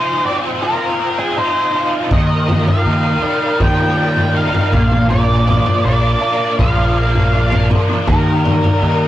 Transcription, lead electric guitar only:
Already playing: C5
0.26 D5
0.63 A#4
1.19 G#4
1.37 C5
2.13 D#5
2.69 F5
3.62 G5
4.37 F5
5.10 D5
5.85 D5
6.60 F5
8.08 A#4

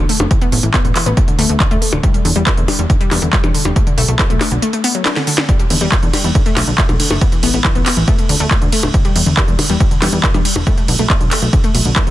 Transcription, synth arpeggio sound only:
0.09 A3
0.20 A3
0.31 E3
0.42 B3
0.52 B3
0.63 E3
0.74 B3
0.85 B3
0.95 E3
1.06 B3
1.17 A3
1.28 D3
1.39 A3
1.49 A3
1.60 D3
1.71 A3
1.82 A3
1.93 D3
2.03 G3
2.14 G3
2.25 D3
2.36 G3
2.57 D3
2.68 G3
2.79 G3
2.90 D3
3.01 G3
3.11 G3
3.22 D3
3.33 G3
3.44 G3
3.54 D3
3.65 G3
3.76 A3
3.87 D3
3.98 A3
4.08 A3
4.19 D3
4.30 A3
4.41 A3
4.52 D3
4.62 A3
4.73 A3
4.84 B3
4.95 F#3
5.06 D4
5.16 D3
5.27 D3
5.38 D3
5.49 G3
5.59 G3
5.70 D3
5.81 G3
6.03 D3
6.14 G3
6.24 G3
6.35 D3
6.46 A3
6.57 A3
6.67 D3
6.78 A3
6.89 A3
7.00 D3
7.11 A3
7.21 B3
7.32 E3
7.43 B3
7.54 B3
7.65 E3
7.75 B3
7.86 B3
7.97 E3
8.08 A3
8.19 A3
8.29 D3
8.40 A3
8.62 D3
8.73 A3
8.83 A3
8.94 D3
9.05 G3
9.16 G3
9.26 D3
9.37 G3
9.48 G3
9.59 D3
9.70 G3
9.80 G3
9.91 D3
10.02 G3
10.13 G3
10.24 D3
10.34 G3
10.45 G3
10.56 D3
10.67 A3
10.78 A3
10.88 D3
10.99 A3
11.10 A3
11.21 D3
11.31 A3
11.42 A3
11.53 D3
11.64 A3
11.75 A3
11.85 D3
11.96 A3
12.07 A3

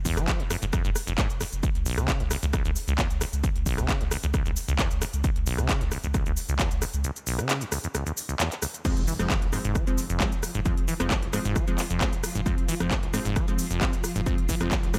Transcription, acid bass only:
0.05 E2
0.17 F3
0.39 A#2
0.50 F2
0.62 G#2
0.73 F2
0.85 G2
1.07 F2
1.18 G#2
1.40 F2
1.63 C#2
1.86 B1
1.97 C#3
2.20 F#2
2.31 C#2
2.43 E2
2.53 C#2
2.65 D#2
2.88 C#2
2.98 E2
3.21 C#2
3.44 C#2
3.66 B1
3.78 C#3
4.01 F#2
4.11 C#2
4.23 E2
4.34 C#2
4.46 D#2
4.68 C#2
4.79 E2
5.02 C#2
5.24 C#2
5.47 B1
5.58 C#3
5.81 F#2
5.92 C#2
6.04 E2
6.14 C#2
6.26 D#2
6.49 C#2
6.59 E2
6.82 C#2
7.04 C#2
7.27 B1
7.39 C#3
7.61 F#2
7.72 C#2
7.84 E2
7.95 C#2
8.07 D#2
8.29 C#2
8.40 E2
8.62 C#2
8.85 F2
9.07 E3
9.19 F2
9.30 F1
9.42 F2
9.53 G#2
9.64 G#2
9.75 F3
10.10 F2
10.20 F1
10.55 G#2
10.65 F2
10.88 E3
11.00 F2
11.11 F1
11.23 F2
11.33 G#2
11.45 G#2
11.56 F3
11.90 F2
12.01 F1
12.35 G#2
12.46 F2
12.68 E3
12.80 F2
12.91 F1
13.03 F2
13.14 G#2
13.25 G#2
13.36 F3
13.71 F2
13.81 F1
14.16 G#2
14.26 F2
14.49 E3
14.61 F2
14.71 F1
14.83 F2
14.94 G#2

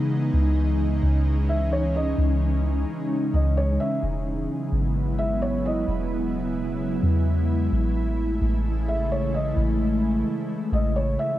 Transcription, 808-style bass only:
Already playing: C#3
0.34 C#2
1.03 C#2
2.18 C#2
3.34 C#2
4.03 E1
4.72 G#1
5.88 E1
7.03 E2
7.72 A1
8.41 A1
9.57 A1
10.72 A1

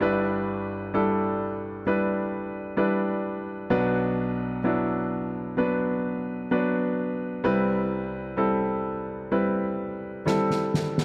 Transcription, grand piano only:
0.00 G1 G2 G3 D4 E4 B4
0.94 G3 D4 E4 A4
1.87 G3 D4 E4 B4
2.77 G3 D4 E4 B4
3.70 B1 B2 F#3 B3 D4 B4
4.64 F#3 B3 D4 E4
5.57 F#3 B3 D4 B4
6.51 F#3 B3 D4 B4
7.44 C2 C3 G3 C4 E4 B4
8.37 G3 C4 E4 A4
9.32 G3 C4 E4 B4
10.26 G3 C4 E4 A4

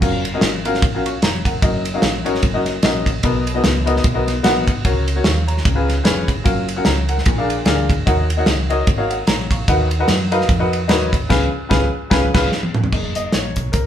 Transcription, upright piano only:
0.01 C#4 F4 F#4 A#4 F5
0.34 C#4 F4 F#4 A#4 D#5
0.65 C#4 F4 F#4 A#4 F5
0.95 C#4 F4 F#4 A#4 F5
1.06 F5 C#6
1.23 C#5 A#5
1.45 A#4 F#5
1.62 C#4 D#4 F#4 A#4 D#5
1.94 C#4 D#4 F#4 A#4 F5
2.24 C#4 D#4 F#4 A#4 C#5
2.54 C#4 D#4 F#4 A#4 D#5
2.83 C#4 D#4 F#4 A#4 D#5
3.23 B2 B3 D#4 F#4 A#4 D#5
3.55 B3 D#4 F#4 A#4 D#5
3.86 B3 D#4 F#4 A#4 D#5
4.14 B3 D#4 F#4 A#4 D#5
4.43 B3 D#4 F#4 A#4 F#5
4.85 C#3 F#4 A#4 C#5
5.16 F#4 A#4 C#5
5.25 F5 C#6
5.47 C#5 A#5
5.65 C#3
5.75 C#4 F4 G#4 B4 F5
6.04 C#4 F4 G#4 B4 C#5
6.44 C#4 F4 F#4 A#4 F5
6.76 C#4 F4 F#4 A#4 F#5
6.86 C#5 A#5
7.09 A#4 F#5
7.26 A#2
7.38 D4 F4 G#4 A#4 F5
7.65 D4 F4 G#4 A#4 F5
8.06 D#3 D#4 F#4 A#4 C#5 F#5
8.37 D#4 F#4 A#4 C#5 F#5
8.70 D#4 F#4 A#4 C#5 D#5
8.98 D#4 F#4 A#4 C#5 F5
9.10 A#4 F#5
9.27 C#5 A#5
9.51 F5 C#6
9.68 D#3 D#4 F#4 A#4 B4 F#5
10.00 D#4 F#4 A#4 B4 F#5
10.31 D#4 F#4 A#4 B4 F5
10.59 D#4 F#4 A#4 B4 F#5
10.88 D#4 F#4 A#4 B4 C#5
11.29 C#3 C#4 F4 G#4 B4 F5
11.69 C#4 F4 G#4 B4 F5
12.10 C#4 F4 G#4 B4 F5
12.34 C#4 F4 G#4 B4 F5
12.92 G#3 A#3 D#4
13.16 D#5
13.33 C#5
13.72 A#4

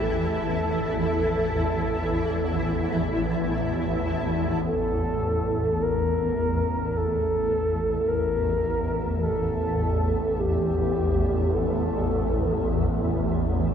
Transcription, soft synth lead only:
0.02 A4
4.66 A4
5.82 A#4
6.97 A4
8.08 A#4
9.23 A4
10.39 G4
11.54 A4

